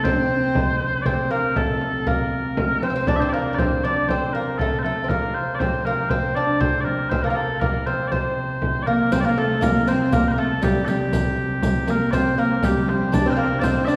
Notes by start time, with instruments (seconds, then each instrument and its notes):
Already playing: pipe organ C3
0.04 viola da gamba C4, lute C4, bagpipes C5, frame drum
0.11 viola da gamba D4
0.18 viola da gamba C4
0.55 frame drum
0.81 frame drum
1.02 pipe organ C3, bagpipes D5, frame drum
1.06 lute C4, bagpipes C5
1.31 lute A#3, bagpipes A#4
1.56 lute A3, bagpipes A4, frame drum
1.81 frame drum
2.07 lute A#3, bagpipes A#4, frame drum
2.57 frame drum
2.82 lute C4, bagpipes C5, frame drum
2.90 lute C4
2.96 lute C4
3.07 lute D4, bagpipes D5, frame drum
3.16 bagpipes C5 E5
3.22 lute C4
3.29 bagpipes A#4 D5
3.34 lute A#3
3.53 lute D4, bagpipes D5
3.58 lute C4, bagpipes C5, frame drum
3.83 lute D4, bagpipes D5, frame drum
4.08 lute C4, bagpipes C5, frame drum
4.33 lute A#3, bagpipes A#4
4.58 lute A3, bagpipes A4, frame drum
4.79 bagpipes C5
4.83 lute A3, bagpipes A4, frame drum
5.04 lute C4
5.09 pipe organ C3, lute A#3, bagpipes A#4, frame drum
5.34 bagpipes C5
5.55 bagpipes D5
5.59 lute C4, bagpipes C5, frame drum
5.85 lute A#3, bagpipes A#4, frame drum
6.10 lute C4, bagpipes C5, frame drum
6.35 lute D4, bagpipes D5
6.60 lute C4, bagpipes C5, frame drum
6.80 bagpipes A#4 D5
6.86 frame drum
7.09 lute C4, bagpipes C5, frame drum
7.23 lute A#3, bagpipes A4 A#4
7.29 lute A#3, bagpipes A#4
7.36 bagpipes A4
7.60 lute A#3, bagpipes A#4, frame drum
7.86 lute C4, bagpipes C5, frame drum
8.08 bagpipes C5 D5
8.12 lute C4, frame drum
8.62 frame drum
8.83 bagpipes A#4 D5
8.87 lute A#3, viola da gamba A#3, frame drum
9.12 pipe organ C3, lute C4, viola da gamba C4, bagpipes C5, riq, frame drum
9.20 bagpipes D5
9.25 lute A#3, viola da gamba A#3, bagpipes A#4
9.38 lute A3, viola da gamba A3, bagpipes A4
9.61 lute A#3, viola da gamba A#3, bagpipes A#4, riq, frame drum
9.87 viola da gamba C4, lute C4, bagpipes C5, riq, frame drum
10.12 lute A#3, viola da gamba A#3, bagpipes A#4, riq, frame drum
10.28 bagpipes A#4 C5
10.38 lute A3, viola da gamba A3, bagpipes A4
10.62 lute G3, viola da gamba G3, bagpipes G4, riq, frame drum
10.85 lute G3, viola da gamba G3, bagpipes G4 A4, riq, frame drum
11.13 riq, frame drum
11.62 riq, frame drum
11.87 lute A#3, viola da gamba A#3, bagpipes A#4, riq, frame drum
11.95 viola da gamba A3
12.01 viola da gamba A#3
12.11 viola da gamba C4, lute C4, bagpipes C5 D5, riq, frame drum
12.37 viola da gamba A#3, lute A#3, bagpipes A#4, riq, frame drum
12.61 viola da gamba G3, lute G3, bagpipes G4, riq, frame drum
12.88 bagpipes C5, frame drum
13.12 pipe organ C3, viola da gamba D4, lute D4, bagpipes D5, riq, frame drum
13.25 viola da gamba C4, lute C4, bagpipes C5
13.30 lute C4, bagpipes A#4 C5
13.37 lute A#3, bagpipes A#4
13.59 lute C4, bagpipes D5, frame drum
13.63 viola da gamba C4, bagpipes C5, riq
13.85 viola da gamba D4, lute D4, bagpipes D5 E5, riq